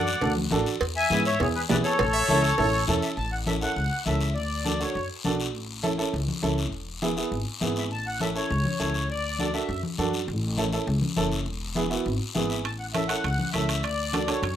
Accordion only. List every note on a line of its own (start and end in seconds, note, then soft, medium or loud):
0.00 0.33 D5 medium
0.00 0.33 F#5 medium
0.96 1.23 E5 medium
0.96 1.23 G#5 loud
1.26 1.39 C#5 medium
1.26 1.41 E5 loud
1.40 1.47 G#4 medium
1.40 1.47 C#5 medium
1.55 1.62 G#4 medium
1.55 1.61 B4 medium
1.69 1.76 B4 medium
1.69 1.76 D5 medium
1.84 2.84 A4 medium
1.84 2.83 C#5 medium
3.02 3.09 E5 medium
3.17 3.31 A5 loud
3.32 3.39 F#5 medium
3.47 3.54 E5 medium
3.61 4.03 F#5 loud
4.06 4.33 E5 medium
4.34 4.81 D5 medium
4.80 5.08 C#5 medium
7.77 7.84 E5 medium
7.92 8.07 A5 loud
8.07 8.20 F#5 medium
8.22 8.28 E5 medium
8.36 8.79 C#5 medium
8.80 9.08 C#5 medium
9.11 9.56 D5 medium
9.54 9.81 E5 medium
12.50 12.56 E5 medium
12.64 12.71 A5 medium
12.79 12.86 F#5 medium
12.93 13.08 E5 medium
13.08 13.50 F#5 medium
13.53 13.84 E5 medium
13.82 14.29 D5 medium
14.28 14.55 C#5 medium